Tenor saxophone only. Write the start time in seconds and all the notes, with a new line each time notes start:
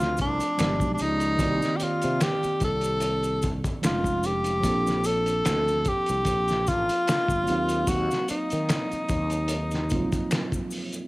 Already playing: F4
0.21 D4
0.94 D4
1.01 D#4
1.76 G4
1.83 F4
2.23 G4
2.64 A4
3.86 F4
4.26 G4
5.06 A4
5.88 G4
6.68 F4
7.89 F#4
8.30 D#4